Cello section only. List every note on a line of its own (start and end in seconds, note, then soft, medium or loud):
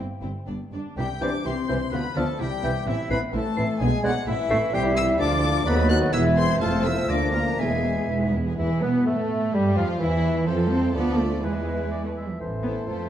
0.22 0.30 G2 soft
0.47 0.55 G2 soft
0.73 0.81 G2 soft
0.97 1.05 C3 medium
1.21 1.29 C3 medium
1.45 1.53 C3 medium
1.69 1.77 C3 medium
1.92 2.00 D3 medium
2.16 2.24 D3 medium
2.40 2.48 C3 medium
2.64 2.72 C3 medium
2.87 2.95 A2 medium
3.11 3.19 A2 medium
3.34 3.42 A2 medium
3.58 3.66 A2 medium
3.81 3.89 B2 medium
4.04 4.12 B2 medium
4.27 4.35 A2 medium
4.51 4.59 A2 medium
4.74 5.14 C2 medium
5.21 5.61 D2 medium
5.67 6.08 D#2 medium
6.14 6.56 E2 medium
6.61 7.04 F2 medium
7.11 7.54 D2 medium
7.60 8.03 E2 medium
8.09 8.32 G#2 medium
8.35 8.59 E2 medium
8.59 8.81 E3 medium
8.84 9.07 B3 medium
9.07 9.54 A3 medium
9.54 9.77 G3 medium
9.77 9.99 F3 medium
10.00 10.46 E3 medium
10.47 10.70 F3 medium
10.71 10.94 C4 medium
10.95 11.18 B3 medium
11.19 11.43 A3 medium
11.43 12.03 G#3 medium
12.04 12.09 A3 medium
12.16 12.28 G#3 medium
12.30 12.41 F3 soft
12.40 12.48 E3 medium
12.63 12.71 B3 medium
12.87 13.09 A3 medium